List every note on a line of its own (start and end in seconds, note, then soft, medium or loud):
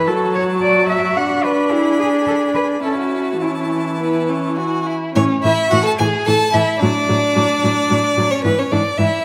0.07 1.18 F#3 medium
0.07 1.67 F#4 medium
0.07 0.34 A4 medium
0.07 1.12 A5 medium
0.35 0.43 C#5 medium
0.62 0.89 D5 medium
0.89 1.18 E5 medium
1.16 2.83 D4 medium
1.16 1.45 F#5 medium
1.16 2.80 B5 medium
1.44 1.72 B4 medium
1.71 1.99 E4 medium
1.71 2.79 G#4 medium
1.99 2.07 G#4 medium
2.27 2.35 A4 medium
2.55 2.63 B4 medium
2.82 3.40 C#4 medium
2.82 3.36 E4 medium
2.82 2.97 A4 medium
2.82 4.53 A5 medium
2.98 3.43 F#4 medium
3.40 4.91 E3 medium
3.40 3.90 C#4 soft
3.40 4.57 E4 soft
4.00 4.30 B3 medium
4.29 4.58 C#4 soft
4.57 4.87 F#4 medium
4.57 4.92 G#5 soft
4.86 5.14 E4 medium
5.14 5.24 A2 medium
5.14 5.24 E3 medium
5.14 5.41 C#4 medium
5.14 5.24 C#5 medium
5.42 5.52 A2 medium
5.42 5.53 E3 medium
5.42 5.69 E4 medium
5.42 5.72 E5 medium
5.69 5.80 A2 medium
5.69 5.80 E3 medium
5.69 5.82 F#4 medium
5.69 5.85 F#5 medium
5.83 5.89 A4 medium
5.83 5.92 A5 medium
5.97 6.08 A2 medium
5.97 6.08 E3 medium
5.97 6.27 G#4 medium
5.97 6.06 G#5 medium
6.26 6.35 A2 medium
6.26 6.36 E3 medium
6.26 6.52 A4 medium
6.26 6.55 A5 loud
6.53 6.62 A2 medium
6.53 6.62 E3 medium
6.53 6.81 E4 medium
6.53 6.79 E5 medium
6.79 6.90 A2 medium
6.79 6.90 F#3 medium
6.79 8.33 D4 medium
6.79 8.32 D5 loud
7.09 7.18 A2 medium
7.09 7.17 F#3 medium
7.35 7.45 A2 medium
7.35 7.43 F#3 medium
7.63 7.72 A2 medium
7.63 7.71 F#3 medium
7.90 7.99 A2 medium
7.90 7.98 F#3 medium
8.17 8.26 A2 medium
8.17 8.25 F#3 medium
8.31 8.44 C#4 medium
8.31 8.43 C#5 medium
8.44 8.53 G#2 medium
8.44 8.53 E3 medium
8.44 8.50 B3 medium
8.44 8.60 B4 medium
8.58 8.64 C#4 medium
8.58 8.73 C#5 medium
8.71 8.80 G#2 medium
8.71 8.80 E3 medium
8.71 8.80 D4 medium
8.71 8.99 D5 medium
8.97 9.07 G#2 medium
8.97 9.07 E3 medium
8.97 9.25 E4 medium
8.97 9.25 E5 medium